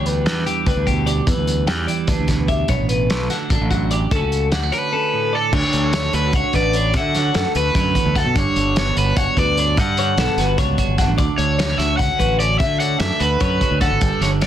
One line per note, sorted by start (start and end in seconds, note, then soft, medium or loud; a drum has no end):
0.00 0.26 D2 medium
0.00 1.25 E2 medium
0.00 0.46 E3 medium
0.00 0.26 G3 medium
0.00 0.67 D4 soft
0.00 1.06 G4 medium
0.06 0.46 B4 medium
0.06 closed hi-hat medium
0.26 0.43 E2 medium
0.26 1.67 G3 medium
0.26 snare loud
0.26 closed hi-hat medium
0.46 1.25 E3 medium
0.46 0.66 G4 medium
0.46 closed hi-hat medium
0.66 0.75 D2 medium
0.66 1.30 D4 medium
0.66 0.87 B4 medium
0.66 kick loud
0.66 closed hi-hat medium
0.76 1.20 D2 medium
0.87 1.25 B2 medium
0.87 1.07 G4 medium
0.87 kick medium
0.87 closed hi-hat medium
1.06 1.25 G4 medium
1.06 1.27 D5 medium
1.06 closed hi-hat medium
1.27 2.66 E2 medium
1.27 1.36 E2 loud
1.27 1.67 B4 medium
1.27 kick loud
1.27 closed hi-hat medium
1.38 1.68 D2 medium
1.47 closed hi-hat medium
1.67 1.85 E2 medium
1.67 2.69 G3 medium
1.67 1.88 G5 medium
1.67 snare loud
1.67 closed hi-hat medium
1.87 2.67 E3 medium
1.87 2.08 D5 medium
1.87 closed hi-hat medium
2.07 2.17 D2 medium
2.07 3.52 D4 medium
2.07 2.48 B4 medium
2.07 kick medium
2.07 closed hi-hat medium
2.19 2.63 D2 medium
2.28 2.66 B2 medium
2.28 kick medium
2.28 snare soft
2.28 closed hi-hat medium
2.48 2.67 G4 medium
2.48 2.69 E5 medium
2.48 kick medium
2.48 closed hi-hat medium
2.68 2.78 B1 loud
2.68 3.30 B2 medium
2.68 2.89 C#5 medium
2.68 kick loud
2.68 closed hi-hat medium
2.80 3.10 A1 medium
2.89 3.30 B4 medium
2.89 closed hi-hat medium
3.10 3.27 B1 medium
3.10 4.14 A3 medium
3.10 snare loud
3.10 closed hi-hat medium
3.30 4.11 D3 medium
3.30 3.51 F#4 medium
3.30 snare soft
3.30 closed hi-hat medium
3.50 3.59 A1 medium
3.50 4.15 D4 medium
3.50 3.70 A4 medium
3.50 kick loud
3.50 closed hi-hat medium
3.61 4.05 A1 medium
3.71 4.09 F#2 medium
3.71 3.91 F#4 medium
3.71 kick medium
3.71 closed hi-hat medium
3.91 4.10 G4 medium
3.91 4.11 D5 medium
3.91 closed hi-hat medium
4.11 4.20 D2 loud
4.11 4.52 A3 medium
4.11 4.93 C#4 medium
4.11 4.52 A4 medium
4.11 kick loud
4.11 closed hi-hat medium
4.16 5.34 F#4 medium
4.22 4.52 C#2 medium
4.32 closed hi-hat medium
4.52 4.69 D2 medium
4.52 4.63 G3 medium
4.52 4.72 F#5 medium
4.52 snare loud
4.52 closed hi-hat medium
4.63 5.54 A3 medium
4.72 5.72 D3 medium
4.72 5.35 B4 medium
4.72 4.92 C#5 medium
4.72 closed hi-hat medium
4.93 5.51 C#4 medium
4.93 5.33 A4 medium
5.14 5.53 A2 medium
5.33 5.51 A4 medium
5.33 5.55 A4 medium
5.33 5.53 D5 medium
5.53 5.62 D2 loud
5.53 6.94 D2 medium
5.53 5.94 D4 loud
5.53 5.94 C#5 medium
5.53 kick loud
5.53 crash loud
5.73 6.08 D2 medium
5.73 7.15 D3 medium
5.73 closed hi-hat medium
5.93 7.36 A3 medium
5.93 6.34 C#5 medium
5.93 6.14 C#5 medium
5.93 snare loud
5.93 closed hi-hat medium
6.13 6.31 D2 medium
6.13 6.56 F#4 medium
6.13 6.35 B4 medium
6.13 closed hi-hat medium
6.33 6.42 C#2 loud
6.33 6.76 D4 medium
6.33 6.55 C#5 medium
6.33 6.54 F#5 medium
6.33 kick loud
6.33 closed hi-hat medium
6.53 6.96 A1 medium
6.53 7.56 F#4 medium
6.53 6.74 B4 medium
6.53 6.96 D5 medium
6.53 kick medium
6.53 snare soft
6.53 closed hi-hat medium
6.73 7.99 D4 medium
6.73 6.95 C#5 medium
6.73 closed hi-hat medium
6.94 7.75 D2 medium
6.94 7.29 D3 loud
6.94 7.15 E5 medium
6.94 7.52 F#5 loud
6.94 kick loud
6.94 closed hi-hat medium
7.15 8.57 D3 medium
7.15 7.35 C#5 medium
7.15 snare soft
7.15 closed hi-hat medium
7.34 7.44 F#2 medium
7.34 8.40 A3 medium
7.34 7.55 A4 medium
7.34 snare loud
7.34 closed hi-hat medium
7.55 7.73 D2 medium
7.55 8.40 F#4 medium
7.55 7.76 B4 medium
7.55 8.18 B4 loud
7.55 closed hi-hat medium
7.75 7.95 D2 medium
7.75 7.92 F#2 medium
7.75 8.16 C#5 medium
7.75 kick loud
7.75 closed hi-hat medium
7.95 8.15 E2 medium
7.95 kick medium
7.95 closed hi-hat medium
8.05 8.23 D2 medium
8.15 8.35 F#2 medium
8.15 8.37 A4 medium
8.15 8.36 F#5 medium
8.15 kick medium
8.15 snare soft
8.15 closed hi-hat medium
8.25 8.34 B2 medium
8.35 8.44 G1 loud
8.35 9.75 G2 medium
8.35 8.76 D4 medium
8.35 8.75 C#5 medium
8.35 kick loud
8.35 closed hi-hat medium
8.56 8.91 G1 medium
8.56 9.97 D3 medium
8.56 closed hi-hat medium
8.76 9.76 B3 medium
8.76 9.17 C#5 medium
8.76 8.96 C#5 medium
8.76 snare loud
8.76 closed hi-hat medium
8.97 9.14 G1 medium
8.97 9.38 F#4 medium
8.97 9.17 B4 medium
8.97 closed hi-hat medium
9.16 9.25 F#1 medium
9.16 9.59 D4 medium
9.16 9.36 C#5 medium
9.16 9.37 F#5 medium
9.16 kick loud
9.16 closed hi-hat loud
9.37 9.78 D2 medium
9.37 9.82 F#4 medium
9.37 9.58 B4 medium
9.37 9.79 D5 medium
9.37 kick medium
9.37 closed hi-hat medium
9.57 10.59 D4 medium
9.57 9.78 C#5 medium
9.57 closed hi-hat medium
9.77 10.13 G2 medium
9.77 11.17 G2 medium
9.77 9.98 D5 medium
9.77 10.55 F#5 medium
9.77 kick loud
9.77 closed hi-hat loud
9.97 11.39 D3 medium
9.97 10.18 C#5 medium
9.97 closed hi-hat medium
10.17 10.26 B1 medium
10.17 11.17 B3 medium
10.17 10.39 A4 medium
10.17 snare loud
10.17 closed hi-hat medium
10.37 10.55 G1 medium
10.37 10.79 F#4 medium
10.37 10.58 B4 medium
10.37 snare soft
10.37 closed hi-hat medium
10.58 10.76 C#2 medium
10.58 10.98 D4 medium
10.58 10.98 C#5 medium
10.58 kick loud
10.58 snare soft
10.58 closed hi-hat medium
10.78 11.62 F#4 medium
10.78 kick medium
10.78 closed hi-hat medium
10.88 11.06 G1 medium
10.98 12.01 D4 medium
10.98 11.17 F#5 medium
10.98 kick medium
10.98 snare soft
10.98 closed hi-hat medium
11.08 11.17 A1 medium
11.18 11.27 D2 loud
11.18 12.59 D2 medium
11.18 11.59 D5 medium
11.18 kick loud
11.18 closed hi-hat medium
11.38 11.74 D2 medium
11.38 12.79 D3 medium
11.38 11.80 C#5 medium
11.38 closed hi-hat medium
11.59 11.69 G3 medium
11.59 11.99 C#5 medium
11.59 snare loud
11.59 closed hi-hat medium
11.69 12.60 A3 medium
11.78 11.96 D2 medium
11.78 12.20 F#4 medium
11.78 11.97 E5 loud
11.78 snare soft
11.78 closed hi-hat medium
11.97 12.08 C#2 medium
11.97 12.38 C#4 medium
11.97 12.36 F#5 medium
11.97 12.19 F#5 medium
11.97 kick loud
11.97 closed hi-hat loud
12.19 12.61 A1 medium
12.19 13.21 F#4 medium
12.19 12.40 B4 medium
12.19 kick medium
12.19 closed hi-hat medium
12.39 12.57 C#4 medium
12.39 12.60 C#5 medium
12.39 12.58 D5 loud
12.39 closed hi-hat medium
12.59 14.01 D2 medium
12.59 12.95 D3 loud
12.59 12.79 E5 loud
12.59 12.80 E5 medium
12.59 kick loud
12.59 closed hi-hat loud
12.80 14.20 D3 medium
12.80 13.01 C#5 medium
12.80 13.00 F#5 medium
12.80 closed hi-hat medium
13.00 13.09 F#2 medium
13.00 14.04 A3 medium
13.00 13.21 A4 medium
13.00 13.21 E5 medium
13.00 snare loud
13.00 closed hi-hat medium
13.20 13.38 D2 medium
13.20 13.62 F#4 medium
13.20 13.81 B4 loud
13.20 13.40 B4 medium
13.20 closed hi-hat medium
13.40 13.58 F#2 medium
13.40 13.80 C#4 medium
13.40 13.81 C#5 medium
13.40 kick loud
13.40 closed hi-hat medium
13.61 14.04 F#4 medium
13.61 kick medium
13.61 closed hi-hat medium
13.71 13.89 D2 medium
13.81 13.99 C#4 medium
13.81 14.23 A4 medium
13.81 14.02 F#5 medium
13.81 kick medium
13.81 snare soft
13.81 closed hi-hat medium
13.91 14.00 G#1 medium
14.01 14.10 G1 loud
14.01 14.47 G2 medium
14.01 14.42 D5 loud
14.01 kick loud
14.01 closed hi-hat medium
14.21 14.47 G1 medium
14.21 14.47 D3 medium
14.21 14.28 C#5 medium
14.21 snare soft
14.21 closed hi-hat medium
14.41 14.47 B3 medium
14.41 14.47 C#5 medium
14.41 14.47 D5 medium
14.41 snare loud
14.41 closed hi-hat medium